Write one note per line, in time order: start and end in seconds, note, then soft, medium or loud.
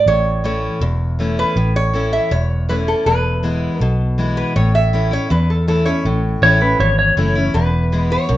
0.06 0.68 A1 medium
0.06 0.78 A2 medium
0.06 0.44 C#5 medium
0.44 0.79 E3 medium
0.44 0.80 A3 medium
0.44 0.80 C#4 medium
0.44 0.80 E4 medium
0.44 0.79 C#5 medium
0.81 1.43 E1 medium
0.81 1.52 E2 medium
1.19 1.54 E3 soft
1.19 1.55 A3 medium
1.19 1.55 C#4 medium
1.19 1.55 E4 medium
1.39 1.76 B4 medium
1.56 2.18 A1 medium
1.56 2.28 A2 medium
1.76 2.10 C#5 medium
1.94 2.29 E3 medium
1.94 2.30 A3 medium
1.94 2.30 C#4 medium
1.94 2.30 E4 medium
2.13 2.32 E5 medium
2.31 2.93 E1 medium
2.31 3.02 E2 medium
2.31 2.69 C#5 medium
2.69 3.04 E3 soft
2.69 3.05 A3 medium
2.69 3.05 C#4 medium
2.69 3.05 E4 medium
2.69 2.74 B4 medium
2.88 3.07 A4 medium
3.06 3.67 E1 medium
3.06 3.77 E2 medium
3.06 3.81 B4 medium
3.43 3.79 E3 medium
3.43 3.79 G#3 medium
3.43 3.79 B3 medium
3.43 3.80 E4 medium
3.80 4.42 B1 medium
3.80 4.52 B2 medium
3.80 4.14 A4 medium
4.18 4.54 E3 medium
4.18 4.54 G#3 medium
4.18 4.54 B3 medium
4.18 4.55 E4 medium
4.37 4.56 B4 medium
4.56 5.17 A1 medium
4.56 5.27 A2 medium
4.56 4.75 C#5 medium
4.75 5.09 E5 medium
4.93 5.11 E3 medium
4.93 5.11 A3 medium
4.93 5.12 C#4 medium
4.93 5.10 E4 medium
5.11 5.30 C#4 soft
5.11 5.29 E4 medium
5.11 5.30 C#5 medium
5.30 6.01 E2 medium
5.30 5.92 E2 medium
5.30 5.50 B4 medium
5.50 5.67 A4 medium
5.68 5.86 E3 medium
5.68 5.86 A3 medium
5.68 5.86 C#4 medium
5.68 5.85 E4 medium
5.68 5.87 A4 medium
5.85 6.05 C#4 medium
5.85 6.04 E4 medium
5.85 6.94 C#5 medium
6.05 6.36 A1 medium
6.05 6.76 A2 medium
6.42 6.74 A1 medium
6.42 6.60 E3 medium
6.42 6.61 A3 medium
6.42 6.61 C#4 medium
6.42 6.59 E4 medium
6.42 6.61 C#5 medium
6.61 6.80 C#4 soft
6.61 6.79 E4 medium
6.61 6.80 B4 medium
6.79 7.11 G#1 medium
6.79 7.51 E2 medium
6.79 6.98 C#5 medium
6.99 7.16 C#5 medium
7.17 7.49 F#1 medium
7.17 7.35 E3 medium
7.17 7.35 A3 medium
7.17 7.36 C#4 medium
7.17 7.34 E4 medium
7.17 7.45 C#5 medium
7.35 7.55 C#4 soft
7.35 7.54 E4 medium
7.54 8.16 E1 medium
7.54 8.26 E2 medium
7.54 8.12 B4 medium
7.92 8.10 E3 medium
7.92 8.10 G#3 medium
7.92 8.11 B3 medium
7.92 8.09 E4 medium
8.10 8.29 B3 medium
8.10 8.29 E4 medium
8.10 8.37 C#5 medium
8.29 8.37 B1 medium
8.29 8.37 F#2 medium